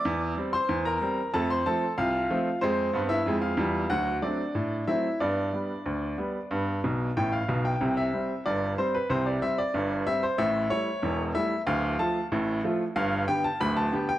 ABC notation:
X:1
M:2/4
L:1/16
Q:1/4=93
K:C
V:1 name="Grand piano"
[dd']3 [cc']2 [_B_b]3 | [Aa] [cc'] [Aa]2 [Ff]4 | [Cc]3 [Ee]2 [Ff]3 | [^F^f]2 [Dd]4 [Ee]2 |
[Dd]8- | [Dd]4 g f2 g- | g e3 d2 c B | c d e d3 e c |
e2 ^c4 e2 | f2 a2 z4 | f2 g a b a2 g |]
V:2 name="Grand piano" clef=bass
E,,2 [G,C]2 E,,2 [G,C]2 | [F,,A,]2 [F,A,C]2 C,,2 [F,A,C]2 | [F,,_A,]2 [G,,B,]2 [F,,A,]2 [E,,G,]2 | [D,,^F,]2 [F,A,C]2 A,,2 [F,A,C]2 |
[G,,B,]2 [G,B,]2 D,,2 [G,B,]2 | [G,,B,]2 [B,,,B,,]2 [A,,,A,,]2 [B,,,B,,]2 | [C,,C,]2 [G,C]2 [G,,,G,,]2 [G,C]2 | [C,,C,]2 [G,C]2 [G,,,G,,]2 [G,C]2 |
[A,,,A,,]2 [G,A,E]2 [E,,,E,,]2 [G,A,E]2 | [D,,,D,,]2 [F,A,F]2 [A,,,A,,]2 [F,A,F]2 | [G,,,G,,]2 [D,B,G]2 [D,,,D,,]2 [D,B,G]2 |]